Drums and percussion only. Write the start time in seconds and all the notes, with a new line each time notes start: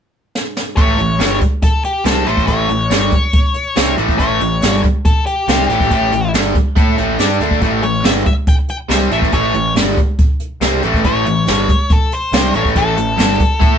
0.35 snare
0.57 snare
0.77 kick, closed hi-hat
0.99 closed hi-hat
1.20 snare, closed hi-hat
1.41 kick, closed hi-hat
1.62 kick, closed hi-hat
1.84 closed hi-hat
2.05 snare, closed hi-hat
2.26 closed hi-hat
2.37 kick
2.48 kick, closed hi-hat
2.69 closed hi-hat
2.91 snare, closed hi-hat
3.12 kick, closed hi-hat
3.33 kick, closed hi-hat
3.54 closed hi-hat
3.76 snare, closed hi-hat
3.98 closed hi-hat
4.09 kick
4.19 kick, closed hi-hat
4.41 closed hi-hat
4.62 snare, closed hi-hat
4.84 kick, closed hi-hat
5.05 kick, closed hi-hat
5.27 closed hi-hat
5.48 snare, closed hi-hat
5.70 closed hi-hat
5.80 kick
5.91 kick, closed hi-hat
6.12 closed hi-hat
6.34 snare, closed hi-hat
6.55 kick, closed hi-hat
6.77 kick, closed hi-hat
6.98 closed hi-hat
7.19 snare, closed hi-hat
7.41 closed hi-hat
7.51 kick
7.62 kick, closed hi-hat
7.83 closed hi-hat
8.04 snare, closed hi-hat
8.26 kick, closed hi-hat
8.47 kick, closed hi-hat
8.68 closed hi-hat
8.90 snare, closed hi-hat
9.11 closed hi-hat
9.22 kick
9.32 kick, closed hi-hat
9.54 closed hi-hat
9.76 snare, closed hi-hat
9.97 kick, closed hi-hat
10.19 kick, closed hi-hat
10.40 closed hi-hat
10.61 snare, closed hi-hat
10.83 closed hi-hat
10.94 kick
11.04 kick, closed hi-hat
11.26 closed hi-hat
11.47 snare, closed hi-hat
11.69 kick, closed hi-hat
11.90 kick, closed hi-hat
12.12 closed hi-hat
12.33 snare, closed hi-hat
12.54 closed hi-hat
12.65 kick
12.76 kick, closed hi-hat
12.97 closed hi-hat
13.19 snare, closed hi-hat
13.40 kick, closed hi-hat
13.61 kick, closed hi-hat